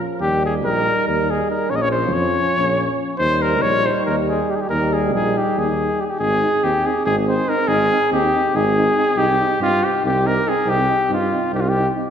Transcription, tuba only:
0.20 D#2
0.65 A#1
1.08 D#2
1.70 A#1
2.13 F2
2.57 A#1
3.19 D#2
3.64 A#1
4.07 D#2
4.70 D#2
5.14 A#1
5.57 D#2
6.20 G#1
6.63 D#2
7.06 G#1
7.68 G#1
8.11 D#2
8.54 G#1
9.16 C2
9.59 G2
10.04 C2
10.66 C2
11.09 G2
11.52 C2

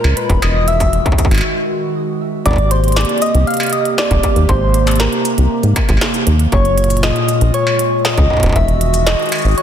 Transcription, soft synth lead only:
Already playing: A#4
0.17 B4
0.42 D#5
0.68 E5
2.46 D5
2.71 C5
2.97 D5
3.22 D#5
3.47 F5
3.73 D#5
3.98 D5
4.49 C5
5.00 A#4
6.52 C#5
7.03 D#5
7.54 C#5
8.05 D#5
8.56 E5
9.07 D#5
9.58 C#5

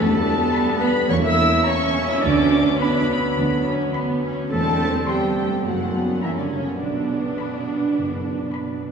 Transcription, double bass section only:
Already playing: E2
1.10 E2
2.24 D2
3.38 D2
4.52 E2
5.66 F#2
6.81 B1
7.97 F#1

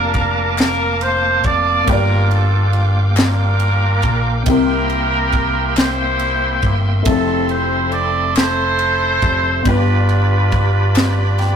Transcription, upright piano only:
Already playing: A#3 D4 F4 A#4 A5
1.84 G2 A#3 D4 F4
1.89 G4 D5
4.43 C3 A#3 C4 E4
4.49 G4 A#4
7.02 A3 C4 E4
7.08 F3 A4
9.63 G2 B3 D4 F4
9.68 G4 B4
11.39 G5

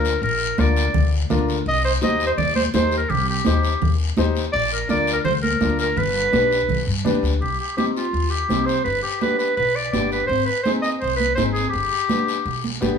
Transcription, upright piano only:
Already playing: D4 F4 A#4
0.58 D4 F4 A#4
1.30 D4 F4 A#4
2.01 D#4 G4 C5
2.74 D#4 G4 C5
3.46 D#4 G4 C5
4.17 D#4 G4 C5
4.89 D4 F4 A#4
5.61 D4 F4 A#4
6.32 D4 G4 B4
7.05 D4 G4 B4
7.77 C4 D#4 G4
8.49 C4 D#4 G4
9.21 B3 D4 G4
9.93 B3 D4 G4
10.65 C4 D#4 G#4
11.37 C4 D#4 G#4
12.09 B3 D4 G4
12.81 B3 D4 G4

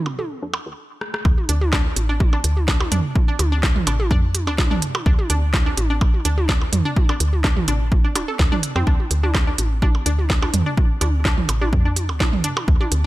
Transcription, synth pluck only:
0.19 A4
0.43 D4
1.49 D4
1.73 D4
2.09 D4
2.33 D4
2.68 D4
2.92 D4
3.28 D4
3.52 D4
3.87 D4
4.11 D4
4.47 D4
4.71 D4
5.06 D4
5.30 D4
5.66 D4
5.90 D4
6.25 D4
6.49 D4
6.85 D4
7.09 D4
7.44 D4
7.68 D4
8.04 D4
8.15 D4
8.28 A4
8.52 D4
8.76 C4
8.87 D4
9.23 D4
9.47 D4
9.82 D4
10.06 D4
10.42 D4
10.66 D4
11.01 D4
11.25 D4
11.61 D4
11.85 D4
12.20 D4
12.44 D4
12.81 D4

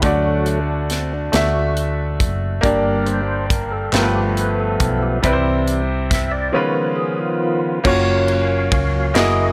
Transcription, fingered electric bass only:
0.03 D2
1.33 D2
2.20 F#1
2.64 G1
3.93 G1
4.80 B1
5.24 C2
7.85 F#1
8.72 C#2
9.15 F#1

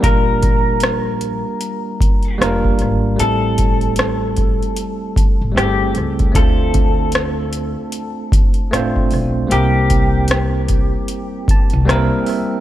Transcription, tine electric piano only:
0.00 G3 A#3 D4 F4
0.05 A#4
2.38 G3 A#3 D4
2.42 F4 A#4
3.16 G3 A3 C4
3.20 E4 A4
5.52 G3 A3 C4
5.56 E4 G#4
5.64 A4
6.32 A3 C4 D4
6.36 F4 C5
8.71 A3 C4 D4
8.75 F4 C5
9.47 G3 A#3 C4
9.51 E4 A#4
11.51 A5
11.85 G3 A#3 C4 G5
11.89 E4 A#4
12.27 E5

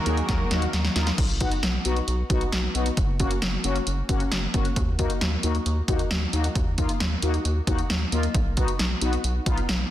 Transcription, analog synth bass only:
0.06 D#2
0.29 D#2
0.51 D#2
0.73 D#2
0.96 D#2
1.18 B1
1.63 B1
1.85 B1
2.08 B1
2.30 B1
2.52 B1
2.75 B1
2.97 F#1
3.42 F#1
3.64 F#1
3.87 F#1
4.09 F#1
4.32 F#1
4.54 F#1
4.76 D#2
5.21 D#2
5.44 D#2
5.66 D#2
5.88 D#2
6.11 D#2
6.33 D#2
6.55 D#2
7.00 D#2
7.23 D#2
7.45 D#2
7.67 D#2
7.90 D#2
8.12 D#2
8.35 B1
8.79 B1
9.02 B1
9.24 B1
9.46 B1
9.69 B1

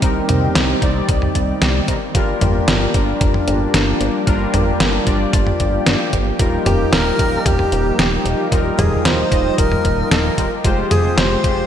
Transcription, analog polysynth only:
0.02 G3 C4 D#4 A#4
0.82 G3 C4 D#4 D5
1.88 G3 C4 D#4 A#4
2.15 G3 D4 F4 A#4
2.94 G3 D4 F4 A#4
4.27 G3 D4 F4 A#4
5.07 G3 D4 F4 D5
6.39 G3 D#4 F4 A#4
7.19 G3 D#4 F4 A#4
8.52 G3 D#4 F4 A#4
9.31 G3 D#4 F4 D#5
10.38 G3 D#4 F4 A#4
10.64 G#3 F4 G4 C5
11.44 G#3 F4 G4 C5

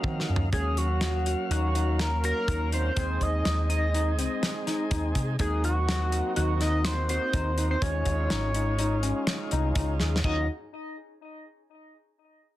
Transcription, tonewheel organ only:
Already playing: F#3 A#3 D#4 F5
0.52 F#3 A#3 C#4 F5
2.96 G#3 C4 D#4 G#4
5.38 A#3 C4 D#4 F#4
7.81 G#3 C#4 D#4 F4
10.24 F#3 A#3 C#4 F4

